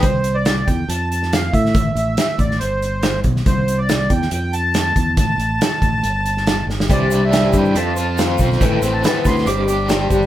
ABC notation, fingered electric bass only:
X:1
M:4/4
L:1/8
Q:1/4=140
K:C
V:1 name="Fingered electric bass" clef=bass
C,,3 E,, F,,3 A,, | A,,, A,,, z A,,, G,,,3 B,,, | C,,3 E,, F,,3 E,, | A,,, A,,, z A,,, G,,,3 G,,, |
C,,3 G,, F,,3 B,,, | A,,, A,,, z D,, G,,,3 G,,, |]